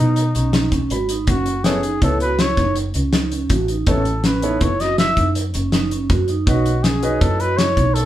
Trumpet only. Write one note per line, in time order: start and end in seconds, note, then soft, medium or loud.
0.00 0.90 D#4 medium
1.29 1.66 F#4 medium
1.65 2.02 G#4 medium
2.03 2.20 A4 medium
2.22 2.42 B4 medium
2.40 2.77 C#5 medium
3.89 4.27 A4 medium
4.26 4.63 B4 medium
4.62 4.82 C#5 medium
4.80 4.98 D#5 medium
4.98 5.33 E5 medium
6.48 6.85 F#4 medium
6.84 7.22 G#4 medium
7.21 7.42 A4 medium
7.40 7.59 B4 medium
7.57 7.96 C#5 medium
7.94 8.05 A4 medium